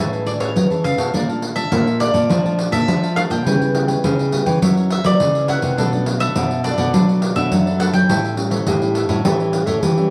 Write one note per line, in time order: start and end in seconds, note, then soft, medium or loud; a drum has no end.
0.00 0.56 A2 medium
0.00 0.53 A3 soft
0.00 0.37 C#4 soft
0.00 0.24 G#4 medium
0.00 0.37 G#4 medium
0.00 0.37 B4 soft
0.00 0.25 C#5 medium
0.00 0.26 E5 medium
0.00 0.37 E5 medium
0.00 0.27 A5 medium
0.13 pandeiro soft
0.26 0.39 G#4 soft
0.26 0.39 C#5 soft
0.26 0.32 D5 medium
0.26 0.40 E5 soft
0.26 0.40 A5 soft
0.26 pandeiro medium
0.40 0.65 C#4 medium
0.40 0.50 G#4 medium
0.40 0.65 G#4 medium
0.40 0.65 B4 medium
0.40 0.86 C#5 medium
0.40 0.50 C#5 medium
0.40 0.50 E5 medium
0.40 0.51 A5 medium
0.40 pandeiro medium
0.56 1.11 E3 soft
0.56 0.69 F#3 medium
0.56 pandeiro medium
0.70 0.84 E3 medium
0.70 1.09 C#4 medium
0.70 1.10 G#4 medium
0.70 1.10 B4 medium
0.70 0.84 C#5 soft
0.70 0.84 E5 soft
0.70 0.84 A5 soft
0.70 pandeiro soft
0.84 0.97 C#3 medium
0.84 0.98 G#4 medium
0.84 0.98 C#5 soft
0.84 0.98 E5 soft
0.84 1.55 F5 medium
0.84 0.97 A5 soft
0.84 pandeiro soft
0.98 1.12 B2 medium
0.98 1.13 C#5 medium
0.98 1.13 E5 medium
0.98 1.12 A5 medium
0.98 pandeiro medium
1.13 1.69 A#2 medium
1.13 1.63 A#2 medium
1.13 1.23 A3 medium
1.13 1.23 D4 medium
1.13 1.23 F4 medium
1.13 1.27 A#4 medium
1.13 1.28 D5 medium
1.13 1.28 F5 medium
1.13 1.27 A5 medium
1.13 pandeiro medium
1.28 1.67 A3 medium
1.28 1.68 D4 medium
1.28 1.68 F4 medium
1.28 1.42 D5 soft
1.28 1.42 F5 soft
1.28 1.42 A5 soft
1.28 pandeiro soft
1.42 muted cavaquinho stroke soft
1.42 pandeiro medium
1.56 1.71 D5 soft
1.56 1.97 E5 medium
1.56 1.71 F5 medium
1.56 1.70 A5 medium
1.56 pandeiro medium
1.72 2.09 A#2 medium
1.72 2.27 F3 medium
1.72 1.89 A3 medium
1.72 1.89 D4 medium
1.72 1.90 F4 medium
1.72 1.99 A#4 soft
1.72 2.00 D5 soft
1.72 2.01 F5 soft
1.72 2.01 A5 soft
1.72 pandeiro medium
1.87 pandeiro soft
2.00 2.28 A3 soft
2.00 2.28 D4 soft
2.00 2.28 F4 medium
2.00 2.14 A#4 soft
2.00 2.69 D5 medium
2.00 2.14 D5 soft
2.00 2.14 F5 soft
2.00 2.13 A5 medium
2.00 pandeiro medium
2.14 2.27 A#2 medium
2.14 2.29 D5 medium
2.14 2.29 F5 medium
2.14 2.28 A5 medium
2.14 pandeiro medium
2.30 2.85 A#2 medium
2.30 2.67 F3 loud
2.30 2.43 A#4 medium
2.30 2.44 D5 medium
2.30 2.44 F5 medium
2.30 2.43 A5 medium
2.30 pandeiro medium
2.45 2.84 A3 medium
2.45 2.84 D4 medium
2.45 2.84 F4 medium
2.45 2.57 D5 soft
2.45 2.58 F5 soft
2.45 2.58 A5 soft
2.45 pandeiro soft
2.58 muted cavaquinho stroke soft
2.58 pandeiro medium
2.72 2.85 A#2 medium
2.72 3.02 D5 medium
2.72 3.13 E5 medium
2.72 3.01 F5 medium
2.72 3.00 A5 medium
2.72 pandeiro medium
2.88 3.25 F3 medium
2.88 3.43 F3 medium
2.88 3.05 A3 medium
2.88 3.05 D4 medium
2.88 3.06 F4 medium
2.88 pandeiro medium
3.03 3.16 D5 soft
3.03 3.17 F5 soft
3.03 3.16 A5 soft
3.03 pandeiro soft
3.16 3.35 A3 medium
3.16 3.36 D4 medium
3.16 3.36 F4 medium
3.16 3.30 A#4 medium
3.16 3.31 D5 medium
3.16 3.21 F5 medium
3.16 3.30 F5 medium
3.16 3.29 A5 medium
3.16 pandeiro medium
3.30 3.46 A#2 medium
3.30 3.45 D5 soft
3.30 3.45 F5 soft
3.30 3.85 G5 medium
3.30 3.44 A5 soft
3.30 pandeiro medium
3.46 3.95 C#3 medium
3.46 4.01 C#3 medium
3.46 3.56 G3 medium
3.46 3.56 B3 medium
3.46 3.59 E4 medium
3.46 3.56 E4 medium
3.46 3.60 B4 medium
3.46 3.60 C#5 medium
3.46 3.59 G5 medium
3.46 pandeiro medium
3.61 3.71 G3 medium
3.61 3.71 B3 medium
3.61 3.71 E4 medium
3.61 3.73 B4 soft
3.61 3.74 C#5 soft
3.61 3.74 G5 soft
3.61 pandeiro soft
3.74 4.28 G3 medium
3.74 4.28 B3 medium
3.74 4.29 E4 medium
3.74 muted cavaquinho stroke soft
3.74 pandeiro medium
3.88 4.03 B4 soft
3.88 4.03 C#5 medium
3.88 4.02 G5 medium
3.88 pandeiro medium
4.03 4.41 C#3 medium
4.03 4.59 C#3 medium
4.03 4.31 E4 soft
4.03 4.32 B4 soft
4.03 4.32 C#5 soft
4.03 4.33 G5 soft
4.03 pandeiro medium
4.19 pandeiro soft
4.32 4.50 G3 soft
4.32 4.50 B3 soft
4.32 4.46 E4 soft
4.32 4.50 E4 soft
4.32 4.46 B4 soft
4.32 4.46 C#5 medium
4.32 4.45 G5 medium
4.32 pandeiro medium
4.46 4.59 E3 medium
4.46 4.61 B4 medium
4.46 4.61 C#5 medium
4.46 4.60 G5 medium
4.46 pandeiro medium
4.62 5.17 F#2 medium
4.62 4.89 E3 medium
4.62 4.99 F#3 medium
4.62 4.90 A#3 soft
4.62 4.90 C#4 medium
4.62 4.75 F#4 medium
4.62 4.76 A#4 medium
4.62 4.76 C#5 medium
4.62 4.75 E5 medium
4.62 pandeiro medium
4.77 4.89 A#4 soft
4.77 4.90 C#5 soft
4.77 4.90 E5 soft
4.77 pandeiro soft
4.90 5.05 E5 medium
4.90 muted cavaquinho stroke soft
4.90 pandeiro medium
5.04 5.44 E3 medium
5.04 5.17 F#3 medium
5.04 5.44 A#3 medium
5.04 5.33 A#4 medium
5.04 5.33 C#5 medium
5.04 5.46 D5 medium
5.04 5.32 E5 medium
5.04 pandeiro medium
5.20 5.57 C#3 medium
5.20 5.75 C#3 medium
5.20 pandeiro medium
5.35 5.47 A#4 soft
5.35 5.48 C#5 soft
5.35 5.48 E5 soft
5.35 pandeiro soft
5.48 5.75 E3 medium
5.48 5.76 A#3 medium
5.48 5.76 C#4 medium
5.48 5.62 F#4 medium
5.48 5.62 A#4 medium
5.48 5.62 C#5 medium
5.48 5.61 E5 medium
5.48 6.24 F#5 medium
5.48 pandeiro medium
5.62 5.78 C3 medium
5.62 5.77 A#4 soft
5.62 5.76 C#5 soft
5.62 5.76 E5 soft
5.62 pandeiro medium
5.77 6.27 B2 medium
5.77 6.33 B2 medium
5.77 5.88 F#3 medium
5.77 5.88 A3 medium
5.77 5.91 D4 medium
5.77 5.88 D4 medium
5.77 5.91 A4 medium
5.77 5.92 B4 medium
5.77 5.91 D5 medium
5.77 pandeiro medium
5.92 6.03 F#3 medium
5.92 6.03 A3 medium
5.92 6.03 D4 medium
5.92 6.06 A4 soft
5.92 6.06 B4 soft
5.92 6.06 D5 soft
5.92 pandeiro soft
6.06 6.44 F#3 medium
6.06 6.44 A3 medium
6.06 6.45 D4 medium
6.06 muted cavaquinho stroke soft
6.06 pandeiro medium
6.19 6.35 A4 medium
6.19 6.34 B4 medium
6.19 6.34 D5 medium
6.19 6.64 E5 loud
6.19 pandeiro medium
6.35 6.91 F#2 medium
6.35 6.73 B2 medium
6.35 6.62 D4 soft
6.35 6.63 A4 soft
6.35 6.64 B4 soft
6.35 6.64 D5 soft
6.35 pandeiro medium
6.51 pandeiro soft
6.64 6.89 F#3 medium
6.64 6.89 A3 soft
6.64 6.77 D4 medium
6.64 6.89 D4 medium
6.64 6.78 A4 medium
6.64 6.77 B4 soft
6.64 7.36 D5 medium
6.64 6.76 D5 medium
6.64 pandeiro medium
6.77 6.91 B2 loud
6.77 6.93 A4 medium
6.77 6.92 B4 medium
6.77 6.92 D5 medium
6.77 pandeiro medium
6.93 7.49 B2 soft
6.93 7.21 F#3 soft
6.93 7.31 F#3 medium
6.93 7.21 A3 medium
6.93 7.07 D4 medium
6.93 7.21 D4 medium
6.93 7.07 A4 medium
6.93 7.07 B4 medium
6.93 7.07 D5 medium
6.93 pandeiro medium
7.08 7.21 A4 soft
7.08 7.21 B4 soft
7.08 7.21 D5 medium
7.08 pandeiro soft
7.22 muted cavaquinho stroke soft
7.22 pandeiro medium
7.35 7.49 B2 medium
7.35 7.75 F#3 medium
7.35 7.75 A3 medium
7.35 7.75 D4 medium
7.35 7.65 A4 medium
7.35 7.64 B4 medium
7.35 7.64 D5 medium
7.35 7.81 E5 loud
7.35 pandeiro medium
7.52 8.06 F#2 medium
7.52 7.88 F#3 medium
7.52 pandeiro medium
7.66 7.79 A4 soft
7.66 7.80 B4 soft
7.66 7.79 D5 soft
7.66 pandeiro soft
7.79 7.99 F#3 medium
7.79 7.99 A3 medium
7.79 7.93 D4 medium
7.79 7.99 D4 medium
7.79 7.94 A4 medium
7.79 7.93 B4 medium
7.79 7.92 D5 medium
7.79 7.85 F#5 medium
7.79 pandeiro medium
7.93 8.09 F#3 medium
7.93 8.08 A4 soft
7.93 8.08 B4 soft
7.93 8.07 D5 medium
7.93 8.48 G5 medium
7.93 pandeiro medium
8.09 8.64 A2 medium
8.09 8.59 A2 medium
8.09 8.34 G3 medium
8.09 8.34 C#4 medium
8.09 8.34 E4 medium
8.09 8.22 G4 medium
8.09 8.23 A4 medium
8.09 8.23 C#5 medium
8.09 8.23 E5 medium
8.09 pandeiro medium
8.24 8.37 A4 soft
8.24 8.37 C#5 soft
8.24 8.37 E5 soft
8.24 pandeiro soft
8.37 8.65 G3 medium
8.37 8.65 C#4 medium
8.37 8.65 E4 medium
8.37 muted cavaquinho stroke soft
8.37 pandeiro medium
8.51 8.66 A4 medium
8.51 8.66 C#5 medium
8.51 8.65 E5 medium
8.51 pandeiro medium
8.67 9.04 A2 medium
8.67 9.22 E3 medium
8.67 8.94 G4 soft
8.67 9.11 G4 medium
8.67 8.95 A4 soft
8.67 8.95 C#5 soft
8.67 8.96 E5 soft
8.67 pandeiro medium
8.81 9.06 G3 medium
8.81 9.06 C#4 medium
8.81 9.06 E4 medium
8.81 pandeiro soft
8.95 9.09 G4 medium
8.95 9.09 A4 soft
8.95 9.09 C#5 medium
8.95 9.08 E5 medium
8.95 pandeiro medium
9.08 9.22 A2 medium
9.08 9.19 G3 medium
9.08 9.19 C#4 medium
9.08 9.20 E4 medium
9.08 9.27 F#4 medium
9.08 9.24 A4 medium
9.08 9.24 C#5 medium
9.08 9.23 E5 medium
9.08 pandeiro medium
9.24 9.80 A2 soft
9.24 9.62 E3 medium
9.24 9.49 G3 soft
9.24 9.49 C#4 medium
9.24 9.49 E4 medium
9.24 9.38 G4 medium
9.24 9.68 G4 medium
9.24 9.38 A4 medium
9.24 9.39 C#5 medium
9.24 9.38 E5 medium
9.24 pandeiro medium
9.39 9.52 A4 soft
9.39 9.53 C#5 soft
9.39 9.53 E5 soft
9.39 pandeiro soft
9.53 9.80 G3 medium
9.53 9.80 C#4 medium
9.53 9.81 E4 medium
9.53 muted cavaquinho stroke soft
9.53 pandeiro medium
9.66 9.80 A2 medium
9.66 9.85 A4 medium
9.66 9.96 A4 medium
9.66 9.96 C#5 medium
9.66 9.95 E5 medium
9.66 pandeiro medium
9.83 10.10 E3 medium
9.83 10.10 G4 loud
9.83 pandeiro medium
9.97 10.10 G3 medium
9.97 10.10 C#4 medium
9.97 10.10 E4 medium
9.97 10.10 A4 soft
9.97 10.10 C#5 soft
9.97 10.10 E5 soft
9.97 pandeiro soft